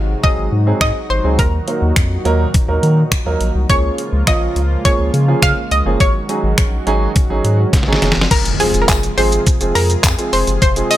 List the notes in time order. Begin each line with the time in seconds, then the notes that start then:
Already playing: G#1 C3 F#3 G#3 D#4 F#4 F5
0.23 F#3 C4 D#4 G#4 D#5, kick
0.38 G#1
0.52 G#2
0.66 F#3 C4 D#4 G#4
0.81 G#2 D#5, finger snap, kick
1.10 G#1 C5
1.24 C#2 F#3 C4 D#4 G#4
1.39 D#2 A#2 D#3 A#4, kick, closed hi-hat
1.67 F#3 A#3 D#4 A#4, closed hi-hat
1.82 D#2
1.96 F2, finger snap, kick, closed hi-hat
2.25 D#2 F#3 A#3 D#4 A#4, closed hi-hat
2.54 kick, closed hi-hat
2.68 D#2 F#3 A#3 D#4 A#4
2.83 D#3, closed hi-hat
3.12 finger snap, kick, closed hi-hat
3.26 D#2 F#3 A#3 D#4 A#4
3.41 A#1, closed hi-hat
3.55 C2
3.69 C#2 C#3 F3 G#3 A#3 C#4 F4 G#4 C#5, kick, closed hi-hat
3.98 closed hi-hat
4.13 C#2
4.27 A#1 F3 A#3 C#4 F4 D#5, finger snap, kick, closed hi-hat
4.56 C#2, closed hi-hat
4.85 F3 A#3 C#4 G#4 C#5, kick, closed hi-hat
4.99 C#2
5.14 C#3, closed hi-hat
5.28 F3 A#3 C#4 G#4
5.42 C#3 F5, finger snap, kick, closed hi-hat
5.71 C#2 D#5, closed hi-hat
5.86 F#1 F3 A#3 C#4 G#4
6.00 G#1 D#3 F#3 C#4 F#4 C#5, kick, closed hi-hat
6.29 F#3 C#4 D#4 G#4, closed hi-hat
6.44 G#1
6.58 A#1, finger snap, kick, closed hi-hat
6.87 G#1 F#3 C#4 D#4 G#4, closed hi-hat
7.16 kick, closed hi-hat
7.30 G#1 F#3 C#4 D#4 G#4
7.44 G#2, closed hi-hat
7.73 kick, snare, closed hi-hat
7.83 snare
7.88 G#1 F#3 C#4 D#4 G#4
7.93 snare
8.02 F1, snare, closed hi-hat
8.12 snare
8.17 F#1
8.21 snare
8.31 F1 C3 F3 G#3 F4 G#4 A#4, kick, closed hi-hat, crash, impact, shaker
8.45 closed hi-hat, shaker
8.60 F3 G#3 C4 G#4, open hi-hat, shaker
8.74 F1, closed hi-hat, shaker
8.82 A#4
8.89 F1 G#4, kick, clap, closed hi-hat, tambourine, shaker
9.03 closed hi-hat, shaker
9.17 G#1 F3 G#3 C4 G#4 C5, open hi-hat, shaker
9.32 closed hi-hat, shaker
9.47 kick, closed hi-hat, shaker
9.61 F1 F3 G#3 C4 G#4, closed hi-hat, shaker
9.75 F2 A#4, open hi-hat, shaker
9.90 closed hi-hat, shaker
10.04 F2, kick, clap, closed hi-hat, tambourine, shaker
10.18 F3 G#3 C4 G#4, closed hi-hat, shaker
10.33 F1 C5, open hi-hat, shaker
10.47 F#1, closed hi-hat, shaker
10.62 F1 C5, kick, closed hi-hat, shaker
10.76 F3 G#3 C4 G#4, closed hi-hat, shaker
10.91 D#5, open hi-hat, shaker